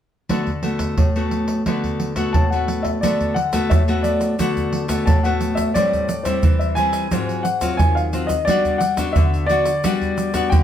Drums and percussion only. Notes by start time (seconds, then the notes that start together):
0.29 pandeiro, surdo
0.47 pandeiro, surdo
0.63 pandeiro
0.79 pandeiro, surdo
0.98 pandeiro, surdo
1.16 pandeiro
1.31 pandeiro
1.48 pandeiro
1.66 pandeiro, surdo
1.84 pandeiro, surdo
2.00 pandeiro
2.16 pandeiro, surdo
2.34 pandeiro, surdo
2.52 pandeiro
2.68 pandeiro
2.85 pandeiro, surdo
3.03 pandeiro, shaker, surdo
3.20 pandeiro, shaker, surdo
3.36 pandeiro
3.53 pandeiro, shaker, surdo
3.71 pandeiro, shaker, surdo
3.88 pandeiro, shaker
4.04 pandeiro, shaker
4.21 pandeiro, shaker
4.39 pandeiro, shaker, surdo
4.57 pandeiro, shaker, surdo
4.73 pandeiro
4.89 pandeiro, shaker, surdo
5.07 pandeiro, shaker, surdo
5.25 pandeiro, shaker
5.41 pandeiro, shaker
5.57 pandeiro, shaker, surdo
5.76 pandeiro, shaker, surdo
5.93 pandeiro, shaker, surdo
6.09 pandeiro, shaker
6.25 pandeiro, shaker, surdo
6.43 pandeiro, shaker, surdo
6.61 pandeiro, shaker
6.77 pandeiro, shaker
6.93 pandeiro, shaker
7.11 pandeiro, shaker, surdo
7.29 pandeiro, shaker
7.45 pandeiro, shaker
7.61 pandeiro, shaker, surdo
7.79 pandeiro, shaker, surdo
7.97 pandeiro, shaker
8.13 pandeiro, shaker
8.29 pandeiro, shaker, surdo
8.47 pandeiro, shaker, surdo
8.65 pandeiro, shaker, surdo
8.81 pandeiro, shaker
8.97 pandeiro, shaker, surdo
9.16 pandeiro, shaker, surdo
9.34 pandeiro, shaker
9.50 pandeiro, shaker
9.65 pandeiro, shaker
9.84 pandeiro, shaker, surdo
10.02 pandeiro, shaker, surdo
10.18 pandeiro, shaker
10.34 pandeiro, shaker, surdo
10.52 pandeiro, shaker, surdo